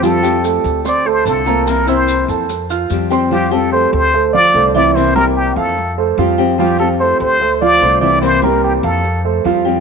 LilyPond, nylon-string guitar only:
\new Staff \with { instrumentName = "Nylon-string guitar" } { \time 4/4 \key f \major \tempo 4 = 147 <f g c' g'>8 <g c' g'>4. r4 <d a c' f'>8 <a c' f'>8 | <c e bes c' e'>8 <e bes c' e'>4. r4 <f g c' g'>8 <g c' g'>8 | <f g c' g'>8 <g c' g'>4. r4 <d a c' f'>8 <a c' f'>8 | <c e bes c' e'>8 <e bes c' e'>4. r4 <f g c' g'>8 <g c' g'>8 |
<f g c' g'>8 <g c' g'>4. r4 <d a c' f'>8 <a c' f'>8 | <c e bes c' e'>8 <e bes c' e'>4. r4 <f g c' g'>8 <g c' g'>8 | }